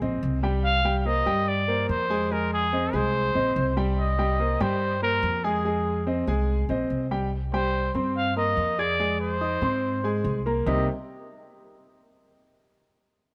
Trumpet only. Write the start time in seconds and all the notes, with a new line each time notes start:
0.64 F5
0.99 F5
1.06 D#5
1.48 D5
1.89 C5
2.32 A#4
2.53 G#4
2.95 C5
3.99 D#5
4.62 C5
5.03 A#4
5.45 G#4
7.53 C5
8.17 F5
8.37 D#5
8.79 D5
9.21 C5
10.67 D#5